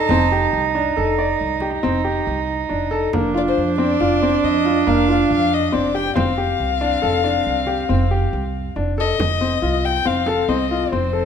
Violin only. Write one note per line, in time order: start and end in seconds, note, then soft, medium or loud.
0.00 0.53 A5 medium
3.38 3.42 D5 medium
3.48 3.77 C5 medium
3.79 4.46 D5 medium
4.45 4.90 D#5 medium
4.89 5.31 F5 medium
5.31 5.55 F5 medium
5.54 5.76 D#5 medium
5.74 5.97 D5 medium
5.96 6.17 G5 medium
6.18 8.72 F5 medium
9.00 9.87 D#5 medium
9.85 10.08 G5 medium
10.06 10.51 F5 medium
10.49 10.94 D#5 medium
10.92 11.25 C5 medium